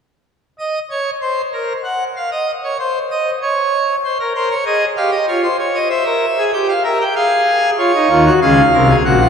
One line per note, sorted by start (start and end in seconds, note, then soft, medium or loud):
0.59 0.79 D#5 medium
0.90 1.10 C#5 medium
1.22 1.41 C5 medium
1.53 1.73 A#4 medium
1.84 2.04 F#5 medium
2.16 2.30 F5 medium
2.31 2.51 D#5 medium
2.63 2.77 C#5 medium
2.80 2.99 C5 medium
3.11 3.30 D#5 medium
3.42 3.96 C#5 medium
4.04 4.18 C5 medium
4.20 4.33 A#4 medium
4.35 4.54 A#4 medium
4.35 4.49 C5 medium
4.51 4.64 C#5 medium
4.65 4.85 G#4 medium
4.65 4.85 D#5 medium
4.97 5.16 G4 medium
4.97 5.10 F5 medium
5.12 5.25 D#5 medium
5.28 5.47 F4 medium
5.28 5.42 C#5 medium
5.43 5.57 C5 medium
5.58 5.78 C#5 medium
5.75 5.88 D#5 medium
5.90 6.04 C5 medium
5.90 6.44 E5 medium
6.06 6.25 A#4 medium
6.38 6.51 G#4 medium
6.53 6.73 G4 loud
6.53 6.67 G5 medium
6.69 6.82 F5 medium
6.84 7.04 A#4 medium
6.84 6.98 E5 medium
7.01 7.14 G5 medium
7.16 7.70 G#4 medium
7.16 7.70 F5 medium
7.78 7.92 F4 medium
7.78 8.33 C#5 medium
7.95 8.08 D#4 medium
8.10 8.30 D#2 medium
8.10 8.30 D#3 medium
8.10 8.24 F4 medium
8.25 8.39 F#4 medium
8.41 8.61 C#2 medium
8.41 8.61 C#3 loud
8.41 8.61 G#4 medium
8.41 8.96 F5 medium
8.73 8.93 C2 medium
8.73 8.93 C3 medium
8.73 8.87 A#4 medium
8.89 9.03 G#4 medium
9.05 9.24 A#1 medium
9.05 9.24 A#2 medium
9.05 9.18 F#4 medium
9.05 9.29 F#5 medium
9.21 9.29 F4 medium